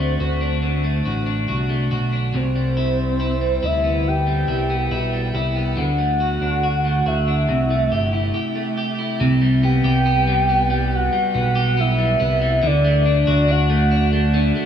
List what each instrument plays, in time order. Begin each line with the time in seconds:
Already playing: analog synth bass D2, clean electric guitar D3 D4 F#4, soft synth lead C5
0.00 clean electric guitar A3
0.20 analog synth bass D2, clean electric guitar F#4
0.41 clean electric guitar D4
0.63 clean electric guitar D3
0.84 clean electric guitar A3
1.05 analog synth bass A1, clean electric guitar F#4
1.26 clean electric guitar D4
1.48 analog synth bass C2, clean electric guitar F#4
1.69 clean electric guitar A3
1.91 analog synth bass B1, clean electric guitar F#4
2.13 clean electric guitar D4
2.34 analog synth bass C2, clean electric guitar C3, soft synth lead C5
2.56 clean electric guitar G3
2.77 clean electric guitar E4
3.20 clean electric guitar E4
3.41 clean electric guitar G3
3.63 analog synth bass D2, clean electric guitar E4, soft synth lead E5
3.84 clean electric guitar B3
4.07 soft synth lead G5
4.27 clean electric guitar G3
4.48 analog synth bass C2, clean electric guitar E4
4.70 clean electric guitar B3
4.91 analog synth bass B1, clean electric guitar E4
5.13 clean electric guitar G3
5.34 analog synth bass C2, clean electric guitar E4
5.56 clean electric guitar B3
5.77 analog synth bass D2, clean electric guitar D3, soft synth lead F#5
5.98 clean electric guitar A3
6.20 clean electric guitar F#4
6.41 analog synth bass D2, clean electric guitar D4
6.63 clean electric guitar F#4
6.85 clean electric guitar A3
7.06 analog synth bass D2, clean electric guitar F#4, soft synth lead E5
7.28 clean electric guitar D4
7.48 analog synth bass C2, clean electric guitar C3
7.70 clean electric guitar A3
7.91 analog synth bass G1, clean electric guitar G4
8.13 clean electric guitar E4
8.34 clean electric guitar G4
8.56 clean electric guitar A3
8.77 clean electric guitar G4
8.99 clean electric guitar E4
9.20 analog synth bass C2, clean electric guitar C3
9.42 clean electric guitar G3
9.63 clean electric guitar B3, soft synth lead G5
9.84 analog synth bass C2, clean electric guitar G4
10.06 clean electric guitar B3
10.27 clean electric guitar G3
10.49 clean electric guitar B3
10.70 clean electric guitar G3
10.95 soft synth lead F#5
11.13 clean electric guitar G3
11.35 analog synth bass B1, clean electric guitar B3
11.55 clean electric guitar G4
11.77 clean electric guitar B3, soft synth lead E5
11.99 clean electric guitar G3
12.20 analog synth bass C2, clean electric guitar B3
12.42 clean electric guitar G3
12.63 analog synth bass D2, clean electric guitar D3, soft synth lead D5
12.84 clean electric guitar A3
13.06 clean electric guitar D4
13.27 analog synth bass D2, clean electric guitar F#4
13.48 clean electric guitar D4, soft synth lead F#5
13.70 clean electric guitar A3
13.91 clean electric guitar D4
14.13 clean electric guitar A3
14.34 clean electric guitar D3
14.56 clean electric guitar A3